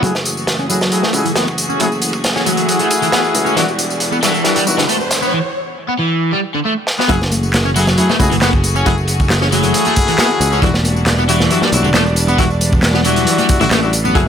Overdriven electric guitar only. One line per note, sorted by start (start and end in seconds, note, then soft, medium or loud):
0.03 0.08 F#3 medium
0.59 0.63 C#4 medium
0.70 1.02 F#3 medium
1.03 1.10 A3 medium
1.25 1.29 E3 medium
1.36 1.43 B3 medium
1.70 1.80 C#4 medium
1.80 1.85 F#3 medium
2.36 2.40 C#4 medium
2.46 2.79 F#3 medium
2.80 2.86 A3 medium
3.02 3.06 E3 medium
3.12 3.20 B3 medium
3.46 3.56 C#4 medium
3.57 3.61 E3 loud
4.12 4.16 B3 medium
4.23 4.55 E3 medium
4.56 4.63 G3 loud
4.78 4.82 D3 medium
4.89 4.96 A3 medium
5.22 5.32 B3 medium
5.33 5.37 E3 medium
5.88 5.93 B3 medium
5.99 6.32 E3 medium
6.32 6.39 G3 medium
6.54 6.59 D3 medium
6.65 6.73 A3 medium
6.99 7.09 B3 medium
7.09 7.14 F#3 medium
7.65 7.69 C#4 medium
7.76 8.08 F#3 medium
8.09 8.16 A3 loud
8.32 8.36 E3 medium
8.42 8.49 B3 medium
8.76 8.86 C#4 medium
8.86 8.91 F#3 medium
9.42 9.46 C#4 medium
9.52 9.85 F#3 medium
9.86 9.93 A3 loud
10.08 10.12 E3 medium
10.19 10.26 B3 medium
10.52 10.62 C#4 medium
10.63 10.67 E3 loud
11.19 11.22 B3 medium
11.29 11.61 E3 medium
11.63 11.69 G3 loud
11.85 11.88 D3 medium
11.95 12.02 A3 medium
12.29 12.39 B3 medium
12.39 12.43 E3 medium
12.95 12.99 B3 medium
13.05 13.38 E3 medium
13.39 13.46 G3 loud
13.61 13.65 D3 medium
13.71 13.79 A3 medium
14.05 14.15 B3 medium
14.15 14.20 F#3 loud